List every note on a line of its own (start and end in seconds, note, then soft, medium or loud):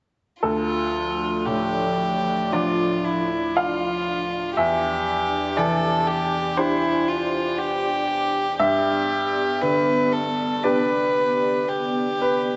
0.43 4.53 D2 soft
0.43 4.53 F3 medium
0.43 4.53 D4 soft
0.43 1.47 F4 soft
0.43 2.49 A4 medium
0.43 4.53 D5 soft
1.45 3.15 A2 soft
1.45 2.54 G4 soft
2.53 4.54 F3 soft
2.53 4.54 D4 soft
2.53 3.06 F4 soft
2.53 3.52 D5 medium
3.05 3.57 E4 soft
3.55 4.56 F4 soft
3.55 4.54 F5 medium
4.56 8.56 E2 soft
4.56 8.55 D4 medium
4.56 8.58 G4 medium
4.56 5.59 G4 medium
4.56 8.55 D5 medium
4.56 5.53 E5 medium
5.57 7.18 E3 soft
5.57 6.08 A4 medium
5.57 6.53 D5 medium
6.07 6.59 G4 medium
6.57 8.56 D4 soft
6.57 7.10 E4 medium
6.57 8.56 G4 soft
6.57 8.56 C5 medium
7.08 7.60 F4 soft
7.58 8.60 G4 medium
8.59 12.56 G2 soft
8.59 12.56 B3 medium
8.59 12.56 G4 medium
8.59 9.63 G4 medium
8.59 12.56 D5 medium
8.59 10.60 E5 medium
9.61 11.27 D3 soft
9.61 10.14 B4 medium
10.12 10.65 A4 soft
10.63 12.56 D4 soft
10.63 12.56 G4 soft
10.63 11.69 B4 medium
10.63 12.20 B4 soft
10.63 12.18 D5 medium
11.68 12.56 G4 soft
12.21 12.56 B4 soft